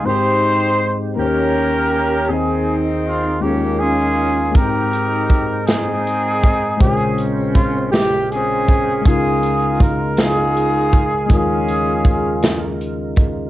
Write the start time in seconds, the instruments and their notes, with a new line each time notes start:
Already playing: tonewheel organ G#3 D#4 C5
0.03 tine electric piano G#2 G#3 C4 D#4 G4 A#4, tonewheel organ C4, horn section C5
0.08 horn section D#4 G4, tonewheel organ G4
0.14 tine electric piano C5
1.16 tine electric piano D#2 D#3 A#3 C#4 D#4 G4 C5, tonewheel organ A#3, horn section C#4 G4 A#4
1.20 tonewheel organ C#4 C#5
1.26 tine electric piano C#5
2.28 tine electric piano D#2 D#3 C4 D#4 G#4, tonewheel organ D#3 C4 G#4, horn section C4 D#4 G#4
3.04 horn section F4
3.41 tine electric piano D#2 D#3 G#3 C#4 D#4 F4 G#4, tonewheel organ G#3 C#4 D#4 F4 A#4, horn section G4
3.46 horn section A#3 C#4
3.50 tine electric piano A#4
3.78 horn section C#4 F4 G#4
4.52 tine electric piano G#2 G#3 C4 D#4, tonewheel organ A#4 C5 G5, horn section A#4, kick, closed hi-hat
4.58 horn section D#4 G4, tine electric piano A#4 G5
4.93 closed hi-hat
5.30 kick, closed hi-hat
5.67 horn section C4 D#4 G#4, snare, closed hi-hat
6.07 closed hi-hat
6.43 kick, closed hi-hat
6.77 tine electric piano A#1 A#2 G#3 C5, tonewheel organ C#3, horn section G#4, kick, closed hi-hat
6.81 tine electric piano C#3 F4, horn section C4 C#4, tonewheel organ F4
6.86 tine electric piano A#4
7.18 closed hi-hat
7.55 horn section F4, kick, closed hi-hat
7.92 horn section G4, snare, closed hi-hat
8.31 horn section C4 C#4 G#4, closed hi-hat
8.68 kick, closed hi-hat
9.02 tine electric piano C#2 G#3 C#4, horn section G#4, kick, closed hi-hat
9.06 tine electric piano C#3 D#4 F4 A#4, tonewheel organ D#4, horn section D#4 F4
9.43 closed hi-hat
9.80 horn section A#4, kick, closed hi-hat
10.17 horn section G#4, snare, closed hi-hat
10.21 horn section D#4 F4
10.57 closed hi-hat
10.93 kick, closed hi-hat
11.26 tine electric piano D#2 D#3 G#3 C#4 D#4, kick, closed hi-hat
11.32 horn section C#4 F4 G#4, tine electric piano F4 A#4
11.68 closed hi-hat
12.05 kick, closed hi-hat
12.43 snare, closed hi-hat
12.81 closed hi-hat
13.16 kick, closed hi-hat